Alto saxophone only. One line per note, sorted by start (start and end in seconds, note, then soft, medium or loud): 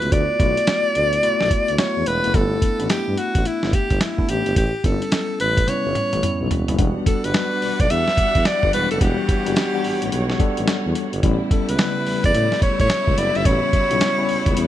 0.00 0.14 B4 loud
0.12 1.81 D5 loud
1.79 2.09 C#5 medium
2.07 2.36 B4 loud
2.35 2.90 A4 loud
2.90 3.19 G4 medium
3.18 3.48 F#4 medium
3.46 3.75 E4 medium
3.74 4.03 G4 medium
4.01 4.31 E4 medium
4.29 4.57 G4 medium
4.57 4.87 G4 medium
4.85 5.40 A4 medium
5.40 5.70 B4 medium
5.69 6.51 C#5 medium
7.07 7.26 A4 medium
7.25 7.82 B4 loud
7.80 7.92 D5 medium
7.90 8.48 E5 loud
8.46 8.73 D5 loud
8.74 8.90 B4 loud
8.91 9.03 A4 medium
9.02 10.68 G4 medium
11.52 11.71 A4 medium
11.69 12.25 B4 medium
12.25 12.60 D5 loud
12.63 12.79 C#5 medium
12.81 13.20 C#5 loud
13.18 13.38 D5 loud
13.36 13.47 E5 loud
13.46 14.67 C#5 loud